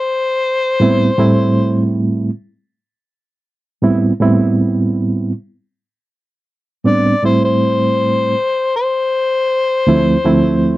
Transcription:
0.00 1.91 C5 loud
0.80 1.09 A2 medium
0.80 1.09 G3 medium
0.80 1.09 B3 medium
0.80 1.10 C4 medium
0.80 1.10 E4 medium
1.18 2.29 A2 medium
1.18 2.29 G3 medium
1.18 2.29 A3 medium
1.18 2.29 C4 medium
1.18 2.30 E4 medium
3.82 4.11 A2 medium
3.82 4.11 G3 medium
3.82 4.12 B3 medium
3.82 4.12 C4 medium
3.82 4.12 E4 medium
4.20 5.31 A2 medium
4.20 5.31 G3 medium
4.20 5.31 B3 medium
4.20 5.32 C4 medium
4.20 5.32 E4 loud
6.84 7.13 A2 medium
6.84 7.14 G3 medium
6.84 7.14 B3 medium
6.84 7.14 C4 medium
6.84 7.14 D4 medium
6.84 7.23 D5 medium
7.23 8.33 A2 medium
7.23 8.34 G3 medium
7.23 8.34 A3 medium
7.23 8.34 C4 medium
7.23 8.34 E4 medium
7.23 7.43 C5 medium
7.45 8.71 C5 medium
8.76 10.78 C5 loud
9.87 10.16 D2 medium
9.87 10.16 F3 medium
9.87 10.16 A3 medium
9.87 10.16 C4 medium
9.87 10.16 E4 medium
10.24 10.78 D2 medium
10.24 10.78 F3 medium
10.24 10.78 A3 medium
10.24 10.78 C4 medium
10.24 10.78 E4 medium

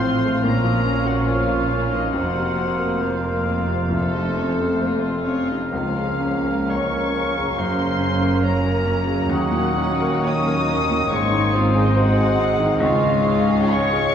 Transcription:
0.00 0.42 A1 medium
0.00 0.40 A2 medium
0.00 0.42 A2 medium
0.00 0.45 F3 soft
0.00 2.15 F3 soft
0.00 2.16 F3 medium
0.00 0.25 A3 soft
0.00 0.03 C4 soft
0.00 0.41 C4 soft
0.00 0.36 C4 soft
0.00 0.47 F4 soft
0.00 2.89 F4 soft
0.00 0.14 C5 soft
0.00 0.45 C5 medium
0.00 0.47 C5 soft
0.00 0.44 C6 medium
0.00 3.90 F6 soft
0.25 0.45 A3 soft
0.43 2.15 A#1 medium
0.43 2.11 A#2 soft
0.43 2.15 A#2 soft
0.43 3.89 A#3 medium
0.43 2.11 C#4 soft
0.43 2.14 C#4 soft
0.43 1.07 A#4 medium
0.43 2.11 C#5 soft
0.43 1.06 A#5 medium
0.64 0.98 F3 soft
0.86 1.20 C#4 soft
1.06 1.29 F#4 soft
1.06 1.41 A#4 soft
1.06 1.28 F#5 medium
1.27 1.93 F4 soft
1.27 1.63 C#5 soft
1.27 1.93 F5 medium
1.50 1.85 A#4 soft
1.73 2.07 C#4 soft
1.91 2.15 F3 soft
1.91 2.13 D#4 soft
1.91 2.14 D#5 soft
2.13 5.51 F1 soft
2.13 3.89 F2 soft
2.13 5.51 F2 soft
2.13 3.92 A#3 soft
2.13 4.78 A#3 soft
2.13 5.38 C4 soft
2.13 2.92 C4 soft
2.13 3.02 F#4 soft
2.13 5.35 C5 soft
2.13 3.00 F#5 medium
2.35 2.71 C3 soft
2.58 2.94 C4 soft
2.78 3.15 A#4 soft
3.00 3.89 C4 soft
3.00 4.17 F4 soft
3.00 3.38 C5 soft
3.00 4.15 F5 soft
3.24 3.61 A#4 soft
3.46 3.83 C4 soft
3.68 3.92 C3 soft
3.90 5.67 F2 soft
3.90 5.23 F2 medium
3.90 7.53 F3 soft
3.90 5.35 A3 soft
3.90 5.51 A3 soft
3.90 8.99 F6 soft
3.94 4.83 A4 soft
4.14 4.50 C3 soft
4.14 4.40 D#4 soft
4.14 4.37 D#5 soft
4.36 4.72 C4 soft
4.36 4.61 C#4 soft
4.36 4.59 C#5 soft
4.58 4.84 C4 soft
4.58 4.95 A4 soft
4.58 4.81 C5 soft
4.80 5.38 A3 soft
4.80 5.06 A#3 soft
4.80 5.72 F4 soft
4.80 5.03 A#4 soft
4.80 5.17 C5 soft
5.02 5.27 C4 soft
5.02 5.40 A4 soft
5.02 5.26 C5 soft
5.24 5.63 C4 soft
5.24 5.52 C#4 soft
5.24 5.48 C#5 soft
5.46 5.70 D#5 soft
5.50 5.72 C3 soft
5.50 5.71 D#4 soft
5.69 7.53 C#2 soft
5.69 11.93 A#3 soft
5.69 12.00 A#3 soft
5.69 11.09 A#3 soft
5.69 11.93 C#4 soft
5.69 11.09 C#4 soft
5.69 6.36 F4 soft
5.69 9.28 A#4 soft
5.69 6.65 F5 medium
5.96 6.36 C#3 soft
6.21 6.60 C#4 soft
6.45 6.83 A#4 soft
6.67 7.59 C#5 medium
6.67 7.06 C#5 soft
6.67 7.56 C#6 medium
6.94 7.28 A#4 soft
7.15 7.49 C#4 soft
7.37 7.58 C#3 soft
7.56 9.31 F#1 soft
7.56 9.32 F#2 soft
7.56 9.28 F#2 soft
7.56 11.14 F#3 soft
7.56 8.46 C5 medium
7.56 8.43 C6 medium
7.78 8.13 C#3 soft
7.99 8.35 C#4 soft
8.21 8.57 A#4 soft
8.42 9.32 A#4 medium
8.42 8.78 C#5 soft
8.42 9.29 A#5 medium
8.64 9.00 A#4 soft
8.86 9.22 C#4 soft
9.07 9.30 C#3 soft
9.29 11.08 D#2 medium
9.29 11.09 D#2 medium
9.29 12.77 D#4 soft
9.29 11.16 C#5 soft
9.29 10.26 F#5 medium
9.29 12.77 D#6 soft
9.33 10.29 F#4 soft
9.51 9.92 A#2 soft
9.76 10.16 C#4 soft
10.01 10.39 A#4 soft
10.24 10.61 C#5 soft
10.24 11.15 D#5 medium
10.24 11.13 D#6 medium
10.46 10.82 A#4 soft
10.69 11.04 C#4 soft
10.91 11.12 A#2 soft
11.10 12.81 G#1 medium
11.10 12.76 G#2 medium
11.10 12.82 G#2 medium
11.10 14.15 G#3 medium
11.10 12.81 C4 soft
11.10 12.54 C5 soft
11.10 11.57 C#5 medium
11.10 11.55 C#6 medium
11.32 11.67 D#3 soft
11.54 11.89 C4 soft
11.54 11.78 F4 medium
11.54 11.76 F5 medium
11.75 11.99 D#4 medium
11.75 12.09 G#4 medium
11.75 11.97 D#5 medium
11.95 14.15 G#3 medium
11.95 12.64 C4 soft
11.95 12.64 F#4 medium
11.95 12.29 C5 medium
11.95 12.81 F#5 medium
12.17 12.51 G#4 medium
12.38 12.73 C4 medium
12.59 12.81 D#3 medium
12.80 14.15 C#2 medium
12.80 14.15 C#4 soft
12.80 14.15 C#4 medium
12.80 14.15 F4 medium
12.80 13.42 F4 medium
12.80 14.15 C#5 medium
12.80 13.70 F5 medium
12.80 14.15 C#6 medium
13.02 13.40 G#2 medium
13.25 13.62 C#4 soft
13.48 13.84 G#4 medium
13.71 14.15 C#5 medium
13.71 14.06 C#5 medium
13.71 14.15 C#6 medium
13.93 14.15 G#4 soft

